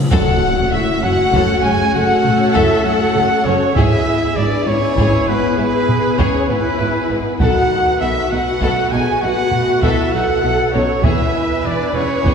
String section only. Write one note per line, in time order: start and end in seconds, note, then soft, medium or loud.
0.11 3.72 A3 loud
0.11 3.72 C#4 loud
0.11 3.72 F#4 loud
0.11 3.72 C#5 loud
3.75 7.37 B3 medium
3.75 7.39 E4 loud
3.75 7.40 G#4 loud
3.75 7.38 B4 medium
7.38 11.03 A3 medium
7.38 10.99 B3 medium
7.38 11.04 F#4 medium
7.38 10.99 B4 medium
11.04 12.34 B3 medium
11.04 12.34 E4 medium
11.04 12.34 G#4 medium
11.04 12.34 B4 medium